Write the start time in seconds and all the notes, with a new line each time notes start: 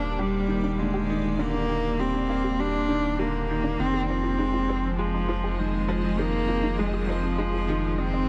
Already playing: D#1 D3 D#3 G3 A#3 D4 G4 C5 D5
0.04 D#4
0.19 G3 G4
0.49 D#3 D#4
0.64 D4
0.79 D3 G#3 D#4
0.94 G4
1.09 D#3
1.24 D#4
1.39 D3 A#3 D4
1.54 D#4
1.69 D#3 G4
1.99 G3 C4 D#4
2.14 D4
2.29 A#3 D#4
2.44 G4
2.59 G3 D4
2.74 D#4
2.89 D#3 D4
3.04 D#4
3.19 D3 A#3 G4
3.49 D#3 D#4
3.64 D4
3.79 F1 D#3 F3 C4 F4
3.92 C4 G#4
4.09 F3 C4
4.24 F4
4.39 G#3 D#4
4.52 F4 G#4
4.60 D#5
4.69 C4 G#4
4.99 F3 G#3 F4
5.14 D#4
5.28 F3 F4
5.44 G#4
5.58 D#3 G#3
5.74 F4
5.88 F3 D#4
6.04 F4
6.18 D#3 A#3 G#4
6.48 F3 F4
6.64 D#4
6.78 G#3 F4
6.94 G#4
7.09 F3 C4
7.24 F4
7.38 G#3 D#4
7.54 F4
7.68 D#3 G#4
7.98 D#3 C4 D#5
8.14 D#5